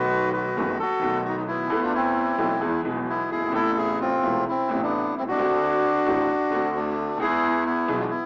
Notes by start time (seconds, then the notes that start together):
Already playing: B1 B2 D#3 A3 B3 F#4 B4
0.33 F#4 B4
0.57 F#1 F#2 D#3 A3 B3 F#4
0.79 F#4 A4
0.99 B1 B2 D#3 A3 B3
1.04 F#4
1.25 D#4 F#4
1.37 B3 D#4
1.48 B3 E4
1.69 E2 E3 A3 A4 B4
1.82 D4 F4
1.94 C4 E4
2.38 B1 B2 E3 A3 B3 A4
2.61 E2 E3 G#3 B3 G#4
2.83 B1 B2 E3 G#3 B3 G#4
3.10 B3 E4
3.31 G1 E4 G#4
3.36 F#1
3.42 G1
3.47 G#1 C3
3.52 A1 A2 A3 B3 E4 A4
3.56 E4
3.78 E4 G#4
4.01 C4 F4
4.23 E1 E2 C3 A3 B3 E4
4.48 C4 E4
4.67 A1 A2 C3 A3 B3 E4
4.83 B3 D4
5.17 C2 C4 E4
5.22 B1
5.28 C2 D4 F#4
5.33 C#2
5.38 D2 D3 A3 C4 F#4
6.06 A1 A2 D3 A3 C4 F#4
6.52 D2 D3 A3 C4 F#4
6.76 A3 D4
7.19 E2 E3 G#3 B3 E4 G#4
7.66 B3 E4
7.88 B1 B2 E3 G#3 B3 G#4
7.99 D4 F4
8.10 B3 E4